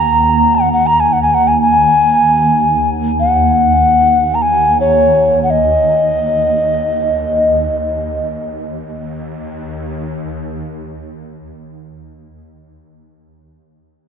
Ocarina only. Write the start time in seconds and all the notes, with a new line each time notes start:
Already playing: A#5
0.55 F#5
0.73 F#5
0.87 A#5
1.00 G#5
1.13 F#5
1.22 G#5
1.34 F#5
1.48 G#5
1.61 G#5
3.20 F#5
4.35 A#5
4.42 G#5
4.81 C#5
5.44 F#5
5.50 D#5